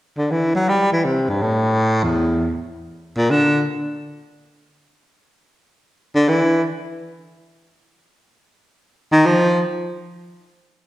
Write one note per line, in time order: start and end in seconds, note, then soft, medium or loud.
0.17 0.33 D3 medium
0.31 0.55 E3 medium
0.55 0.70 F#3 medium
0.69 0.92 G3 medium
0.92 1.06 E3 medium
1.05 1.30 C3 medium
1.29 1.43 G2 medium
1.42 2.05 A2 medium
2.03 2.53 E2 medium
3.16 3.32 A#2 medium
3.30 3.66 D3 medium
6.15 6.30 D3 medium
6.28 6.64 E3 medium
9.12 9.27 D#3 medium
9.26 9.62 F3 medium